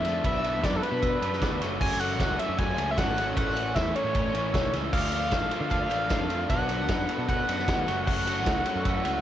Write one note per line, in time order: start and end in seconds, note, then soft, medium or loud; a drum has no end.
0.00 0.19 F2 medium
0.00 0.22 F4 medium
0.00 0.23 D5 medium
0.00 0.25 E5 medium
0.00 0.29 A5 loud
0.00 1.58 A5 medium
0.04 0.23 D3 medium
0.04 0.23 F3 medium
0.04 0.24 A3 medium
0.04 0.23 D4 loud
0.04 snare soft
0.04 ride medium
0.04 tambourine medium
0.24 0.63 B1 loud
0.24 0.43 B2 medium
0.24 0.44 F#3 loud
0.24 0.43 B3 loud
0.24 1.60 D4 medium
0.24 0.44 D4 loud
0.24 1.60 B4 medium
0.24 0.66 E5 loud
0.24 3.34 F#5 medium
0.24 1.05 B5 medium
0.24 kick loud
0.24 ride loud
0.24 tambourine soft
0.44 0.62 B2 medium
0.44 0.63 F#3 medium
0.44 0.63 B3 medium
0.44 0.63 D4 medium
0.44 ride medium
0.44 tambourine medium
0.63 0.80 F#2 medium
0.63 0.82 B2 loud
0.63 0.83 F#3 loud
0.63 0.83 B3 loud
0.63 0.84 D4 loud
0.63 0.76 D5 medium
0.63 kick loud
0.63 snare loud
0.63 ride loud
0.63 tambourine loud
0.76 0.84 A4 medium
0.83 1.01 B2 loud
0.83 1.02 F#3 medium
0.83 1.02 B3 loud
0.83 1.02 D4 loud
0.83 1.61 B4 loud
0.83 ride medium
0.83 tambourine soft
0.92 1.17 B2 loud
1.02 1.21 B2 loud
1.02 1.21 F#3 loud
1.02 1.22 B3 loud
1.02 1.22 D4 loud
1.02 1.43 E6 loud
1.02 kick loud
1.02 ride loud
1.02 tambourine medium
1.21 1.47 F#2 medium
1.21 1.40 B2 medium
1.21 1.41 F#3 medium
1.21 1.41 B3 loud
1.21 1.41 D4 medium
1.21 ride medium
1.21 tambourine medium
1.33 snare soft
1.41 1.60 B2 loud
1.41 1.60 F#3 loud
1.41 1.60 B3 loud
1.41 1.60 D4 loud
1.41 1.62 D6 loud
1.41 kick loud
1.41 snare loud
1.41 ride loud
1.41 tambourine medium
1.51 1.59 D2 medium
1.60 2.20 F#1 medium
1.60 1.79 F#2 medium
1.60 1.80 C#3 loud
1.60 1.80 F#3 loud
1.60 1.82 A3 loud
1.60 4.90 C#4 medium
1.60 1.82 C#4 loud
1.60 4.90 A4 medium
1.60 3.33 C#6 loud
1.60 snare soft
1.60 ride medium
1.60 tambourine medium
1.80 1.99 F#2 medium
1.80 1.99 C#3 loud
1.80 1.99 F#3 loud
1.80 2.00 A3 loud
1.80 2.01 C#4 loud
1.80 2.01 G#5 loud
1.80 kick loud
1.80 crash loud
1.80 tambourine soft
2.00 2.17 F#2 medium
2.00 2.18 C#3 loud
2.00 2.19 F#3 loud
2.00 2.19 A3 loud
2.00 2.20 C#4 medium
2.00 2.41 F#5 loud
2.00 ride medium
2.00 tambourine medium
2.19 2.36 C#2 loud
2.19 2.37 F#2 loud
2.19 2.38 C#3 loud
2.19 2.38 F#3 loud
2.19 2.40 A3 loud
2.19 2.40 C#4 loud
2.19 kick loud
2.19 snare loud
2.19 ride loud
2.19 tambourine medium
2.39 2.57 F#2 medium
2.39 2.57 C#3 medium
2.39 2.58 F#3 medium
2.39 2.59 A3 medium
2.39 2.58 C#4 medium
2.39 2.60 E5 medium
2.39 ride medium
2.39 tambourine soft
2.49 2.74 F#2 loud
2.58 2.78 F#2 medium
2.58 2.78 C#3 loud
2.58 2.79 F#3 loud
2.58 2.80 A3 loud
2.58 2.79 C#4 loud
2.58 2.90 G#5 loud
2.58 kick loud
2.58 ride loud
2.58 tambourine medium
2.77 3.03 C#2 medium
2.77 2.96 F#2 medium
2.77 2.97 C#3 medium
2.77 2.97 F#3 medium
2.77 2.98 A3 loud
2.77 2.98 C#4 medium
2.77 ride medium
2.77 tambourine medium
2.91 2.99 E5 medium
2.97 3.16 F#2 loud
2.97 3.16 C#3 loud
2.97 3.17 F#3 loud
2.97 3.17 A3 loud
2.97 3.17 C#4 loud
2.97 3.37 F#5 loud
2.97 kick loud
2.97 snare loud
2.97 ride loud
2.97 tambourine medium
3.06 3.32 G#1 medium
3.16 3.35 F#2 medium
3.16 3.35 C#3 medium
3.16 3.35 F#3 loud
3.16 3.36 A3 medium
3.16 3.35 C#4 medium
3.16 snare soft
3.16 ride medium
3.16 tambourine medium
3.35 3.76 A1 loud
3.35 3.53 A2 medium
3.35 3.55 E3 loud
3.35 3.55 A3 loud
3.35 3.55 C#4 loud
3.35 3.56 E4 loud
3.35 3.76 F#5 loud
3.35 4.91 G#5 medium
3.35 4.58 C#6 loud
3.35 kick loud
3.35 ride loud
3.35 tambourine soft
3.54 3.73 A2 medium
3.54 3.74 E3 medium
3.54 3.74 A3 medium
3.54 3.74 C#4 medium
3.54 3.75 E4 loud
3.54 ride medium
3.54 tambourine medium
3.74 3.93 E2 loud
3.74 3.93 A2 loud
3.74 3.95 E3 medium
3.74 3.95 A3 loud
3.74 3.94 C#4 medium
3.74 3.95 E4 loud
3.74 3.97 E5 loud
3.74 kick loud
3.74 snare loud
3.74 ride loud
3.74 tambourine loud
3.94 4.12 A2 medium
3.94 4.13 E3 medium
3.94 4.14 A3 medium
3.94 4.14 C#4 medium
3.94 4.14 E4 medium
3.94 4.74 C#5 loud
3.94 ride medium
4.04 4.30 A2 medium
4.14 4.33 A2 loud
4.14 4.33 E3 loud
4.14 4.34 A3 loud
4.14 4.34 C#4 loud
4.14 4.34 E4 loud
4.14 kick loud
4.14 ride loud
4.14 tambourine medium
4.33 4.52 A1 medium
4.33 4.52 A2 medium
4.33 4.53 E3 medium
4.33 4.54 A3 loud
4.33 4.54 C#4 medium
4.33 4.54 E4 medium
4.33 ride medium
4.33 tambourine medium
4.53 4.72 B1 medium
4.53 4.72 A2 loud
4.53 4.73 E3 loud
4.53 4.74 A3 loud
4.53 4.73 C#4 loud
4.53 4.74 E4 loud
4.53 4.72 E6 medium
4.53 kick loud
4.53 snare loud
4.53 ride loud
4.53 tambourine loud
4.73 4.91 C#2 medium
4.73 4.92 A2 medium
4.73 4.93 E3 medium
4.73 4.93 A3 medium
4.73 4.93 C#4 loud
4.73 4.93 E4 medium
4.73 4.94 E6 loud
4.73 snare soft
4.73 ride medium
4.73 tambourine medium
4.93 5.32 D2 loud
4.93 5.11 D3 loud
4.93 5.11 F3 medium
4.93 5.13 A3 medium
4.93 5.13 D4 loud
4.93 7.84 D4 medium
4.93 6.48 F4 medium
4.93 5.12 F4 loud
4.93 5.67 F5 loud
4.93 6.49 A5 medium
4.93 6.46 D6 loud
4.93 kick loud
4.93 crash loud
4.93 tambourine soft
5.12 5.31 D3 medium
5.12 5.30 F3 medium
5.12 5.32 A3 medium
5.12 5.33 D4 medium
5.12 5.33 F4 medium
5.12 ride medium
5.12 tambourine medium
5.31 5.49 A1 loud
5.31 5.51 D3 medium
5.31 5.50 F3 loud
5.31 5.53 A3 loud
5.31 5.52 D4 loud
5.31 5.53 F4 loud
5.31 kick loud
5.31 snare loud
5.31 ride loud
5.31 tambourine loud
5.51 5.71 D3 medium
5.51 5.69 F3 medium
5.51 5.72 A3 medium
5.51 5.72 D4 medium
5.51 5.72 F4 medium
5.51 ride medium
5.51 tambourine soft
5.61 5.86 D3 loud
5.70 5.91 D3 loud
5.70 5.88 F3 loud
5.70 5.92 A3 loud
5.70 5.92 D4 loud
5.70 5.92 F4 loud
5.70 6.45 F5 loud
5.70 kick loud
5.70 ride loud
5.70 tambourine medium
5.89 6.16 A1 medium
5.89 6.10 D3 medium
5.89 6.07 F3 medium
5.89 6.11 A3 loud
5.89 6.11 D4 loud
5.89 ride medium
5.89 tambourine medium
5.93 6.11 F4 loud
6.09 6.30 D3 loud
6.09 6.28 F3 loud
6.09 6.31 A3 loud
6.09 6.31 D4 loud
6.09 6.31 F4 loud
6.09 kick loud
6.09 snare loud
6.09 ride loud
6.09 tambourine loud
6.20 6.45 F2 medium
6.29 6.49 D3 medium
6.29 6.48 F3 medium
6.29 6.51 A3 medium
6.29 6.50 D4 medium
6.29 6.50 F4 loud
6.29 ride medium
6.29 tambourine medium
6.49 6.89 B1 loud
6.49 6.69 B2 medium
6.49 6.71 F#3 loud
6.49 6.70 B3 loud
6.49 6.71 D4 loud
6.49 6.72 F#4 loud
6.49 7.86 A4 medium
6.49 7.24 F#5 loud
6.49 9.21 F#5 medium
6.49 6.91 A5 medium
6.49 7.86 B5 medium
6.49 kick loud
6.49 ride loud
6.49 tambourine soft
6.69 6.88 B2 medium
6.69 6.89 F#3 medium
6.69 6.89 B3 medium
6.69 6.89 D4 loud
6.69 6.90 F#4 loud
6.69 ride medium
6.69 tambourine medium
6.89 7.06 F#2 loud
6.89 7.08 B2 loud
6.89 7.09 F#3 loud
6.89 7.08 B3 loud
6.89 7.09 D4 loud
6.89 7.10 F#4 loud
6.89 7.83 B5 medium
6.89 kick loud
6.89 snare loud
6.89 ride loud
6.89 tambourine loud
7.09 7.27 B2 medium
7.09 7.27 F#3 medium
7.09 7.28 B3 medium
7.09 7.29 D4 medium
7.09 7.29 F#4 medium
7.09 ride medium
7.09 tambourine soft
7.18 7.43 B2 loud
7.28 7.48 B2 loud
7.28 7.49 F#3 loud
7.28 7.49 B3 loud
7.28 7.49 D4 loud
7.28 7.49 F#4 loud
7.28 8.03 F#5 loud
7.28 kick loud
7.28 ride loud
7.28 tambourine medium
7.48 7.73 F#2 medium
7.48 7.68 B2 medium
7.48 7.68 F#3 medium
7.48 7.68 B3 loud
7.48 7.69 D4 medium
7.48 7.69 F#4 medium
7.48 ride medium
7.48 tambourine medium
7.59 snare soft
7.68 7.87 B2 loud
7.68 7.87 F#3 loud
7.68 7.87 B3 loud
7.68 7.87 D4 loud
7.68 7.87 F#4 loud
7.68 kick loud
7.68 snare loud
7.68 ride loud
7.68 tambourine medium
7.77 7.86 D2 medium
7.87 8.46 F#1 medium
7.87 8.06 F#3 loud
7.87 8.07 A3 loud
7.87 8.08 C#4 loud
7.87 9.21 E4 medium
7.87 8.07 F#4 loud
7.87 9.21 A4 medium
7.87 9.21 C#6 loud
7.87 8.81 C#6 loud
7.87 snare soft
7.87 ride medium
7.87 tambourine medium
8.06 8.25 F#3 medium
8.06 8.27 A3 loud
8.06 8.27 C#4 loud
8.06 8.27 F#4 loud
8.06 9.21 F#5 loud
8.06 kick loud
8.06 crash loud
8.06 tambourine soft
8.26 8.44 F#3 loud
8.26 8.46 A3 loud
8.26 8.46 C#4 medium
8.26 8.46 F#4 loud
8.26 ride medium
8.26 tambourine medium
8.46 8.63 C#2 loud
8.46 8.65 F#3 loud
8.46 8.66 A3 loud
8.46 8.67 C#4 loud
8.46 8.66 F#4 loud
8.46 kick loud
8.46 snare loud
8.46 ride loud
8.46 tambourine loud
8.65 8.85 F#3 medium
8.65 8.86 A3 loud
8.65 8.85 C#4 loud
8.65 8.86 F#4 medium
8.65 ride medium
8.65 tambourine soft
8.75 9.00 F#2 loud
8.85 9.04 F#3 loud
8.85 9.06 A3 loud
8.85 9.05 C#4 loud
8.85 9.05 F#4 loud
8.85 9.21 E6 loud
8.85 kick loud
8.85 ride loud
8.85 tambourine medium
9.05 9.21 C#2 medium
9.05 9.21 F#3 medium
9.05 9.21 A3 loud
9.05 9.21 C#4 medium
9.05 9.21 F#4 loud
9.05 ride medium
9.05 tambourine medium